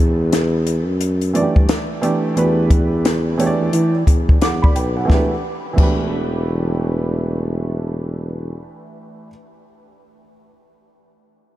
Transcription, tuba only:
Already playing: E2
0.87 F#2
1.56 G2
2.36 E2
3.60 E2
3.73 E3
4.07 E2
4.41 E2
4.76 B1
5.10 E1
5.78 E1

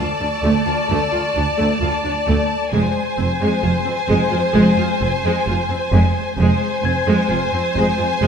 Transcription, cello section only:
0.21 D2
0.44 D2
0.67 D2
0.90 D2
1.14 D2
1.37 D2
1.59 D2
1.83 D2
2.05 D2
2.28 D2
2.72 F2
3.18 F2
3.41 F2
3.63 F2
3.86 F2
4.08 F2
4.32 F2
4.55 F2
4.77 F2
5.00 F2
5.23 F2
5.46 F2
5.69 F2
5.92 F2
6.37 F2
6.83 F2
7.06 F2
7.29 F2
7.52 F2
7.75 F2
7.98 F2
8.21 F2

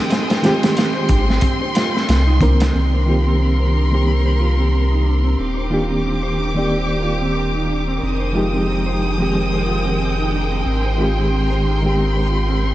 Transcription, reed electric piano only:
0.42 D#3 G#3 C4 G4
2.41 D#3 A#3 C4 A#4
3.06 D#3 A#3 C4
3.10 G4
3.91 D#3 A#3 C4 G4
5.70 D#3 A#3 D4 G4
6.55 D#3 A#3 D5
6.59 G4
8.33 F3 G#3 D#4
8.37 G4
9.18 D#3 F3 G#3
9.22 G4
10.97 D#3 G#3 C4
11.01 G4
11.82 D#3 G#3 C4
11.86 G4

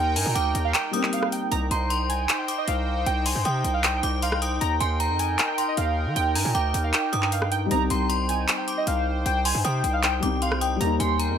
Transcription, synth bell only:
0.16 A#5
0.35 D6
0.93 D#6
1.71 A#5
1.90 C6
2.48 D6
3.26 C6
3.45 D#6
4.03 D6
4.23 C6
4.42 D#6
4.80 G#5
5.00 A#5
5.58 C6
6.35 A#5
6.55 D6
7.13 D#6
7.90 A#5
8.09 C6
8.68 D6
9.45 C6
9.65 D#6
10.23 D6
10.42 C6
10.61 D#6
11.00 G#5
11.19 A#5

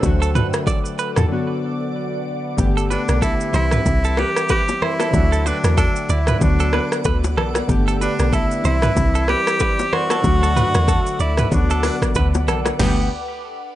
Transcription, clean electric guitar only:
0.22 A4
0.35 B4
0.67 D5
0.99 B4
1.17 A4
2.77 A4
2.90 B4
3.22 A4
3.54 C5
3.73 B4
4.05 A4
4.18 B4
4.50 B4
4.82 C5
5.00 A4
5.32 A4
5.46 B4
5.78 A4
6.10 D5
6.28 B4
6.60 A4
6.74 B4
7.06 B4
7.37 A4
7.88 A4
8.01 B4
8.33 A4
8.65 C5
8.83 B4
9.15 A4
9.28 B4
9.61 B4
9.93 C5
10.11 A4
10.43 A4
10.56 B4
10.88 A4
11.21 D5
11.39 B4
11.71 A4
11.84 B4
12.16 B4
12.48 A4
12.80 G4

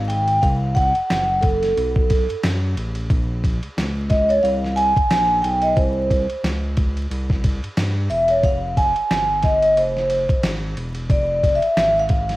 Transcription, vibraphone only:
0.08 G5
0.42 F5
0.75 F#5
1.41 A4
4.10 D#5
4.29 C#5
4.43 F5
4.76 G#5
5.42 G5
5.62 D#5
5.76 C5
8.10 E5
8.30 C#5
8.45 F5
8.77 G#5
9.44 D#5
9.63 D#5
9.77 C5
11.11 D5
11.55 E5
12.00 F5

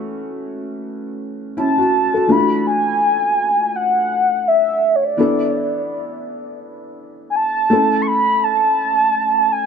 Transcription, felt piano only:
Already playing: E3 A3 C#4 F#4
1.57 C#4 E4
1.78 F#4
2.14 F#4 A4
2.27 E3 A3 D4 F4
2.37 F#4
5.17 E3 B3 D4 E4 A4
7.70 A3 C#4 E4 A4

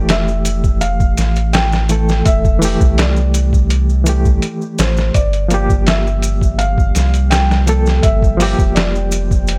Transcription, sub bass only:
Already playing: F1
1.18 A1
2.26 F1
2.81 C2
4.79 A1
5.15 G1
6.96 C2
8.04 G1
8.59 F1

